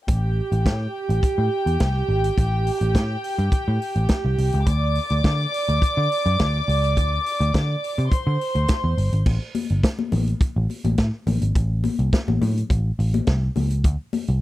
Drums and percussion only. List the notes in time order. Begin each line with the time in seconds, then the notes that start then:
0.08 kick, closed hi-hat
0.52 closed hi-hat
0.66 kick, snare, closed hi-hat
1.10 closed hi-hat
1.23 kick, closed hi-hat
1.67 closed hi-hat
1.80 kick, snare, closed hi-hat
2.24 closed hi-hat
2.38 kick, closed hi-hat
2.67 open hi-hat
2.81 closed hi-hat
2.95 kick, snare, closed hi-hat
3.24 open hi-hat
3.39 closed hi-hat
3.52 kick, closed hi-hat
3.82 open hi-hat
3.96 closed hi-hat
4.08 kick, snare, closed hi-hat
4.38 open hi-hat
4.52 closed hi-hat
4.66 kick, closed hi-hat
4.95 open hi-hat
5.10 closed hi-hat
5.24 kick, snare, closed hi-hat
5.54 open hi-hat
5.69 closed hi-hat
5.82 kick, closed hi-hat
6.12 open hi-hat
6.26 closed hi-hat
6.39 kick, snare, closed hi-hat
6.69 open hi-hat
6.84 closed hi-hat
6.97 kick, closed hi-hat
7.26 open hi-hat
7.41 closed hi-hat
7.54 kick, snare, closed hi-hat
7.84 open hi-hat
7.99 closed hi-hat
8.12 kick, closed hi-hat
8.41 open hi-hat
8.55 closed hi-hat
8.68 kick, snare, closed hi-hat
8.98 open hi-hat
9.13 closed hi-hat
9.26 kick, crash, muted conga
9.55 open hi-hat, high conga
9.70 closed hi-hat
9.83 kick, snare, closed hi-hat, muted conga
9.99 high conga
10.12 open hi-hat, high conga, low conga
10.27 closed hi-hat
10.41 kick, closed hi-hat
10.70 open hi-hat, muted conga
10.84 closed hi-hat, high conga
10.98 kick, snare, closed hi-hat
11.27 open hi-hat, muted conga, high conga, low conga
11.42 closed hi-hat
11.55 kick, closed hi-hat, muted conga
11.84 open hi-hat, muted conga, high conga
11.99 closed hi-hat
12.13 kick, snare, closed hi-hat, muted conga
12.28 high conga
12.42 open hi-hat, high conga, low conga
12.57 closed hi-hat
12.70 kick, closed hi-hat
13.00 open hi-hat
13.14 closed hi-hat, high conga
13.27 kick, snare, closed hi-hat, muted conga
13.56 open hi-hat, muted conga, high conga, low conga
13.70 closed hi-hat
13.84 kick, closed hi-hat
14.13 open hi-hat, muted conga, high conga
14.28 closed hi-hat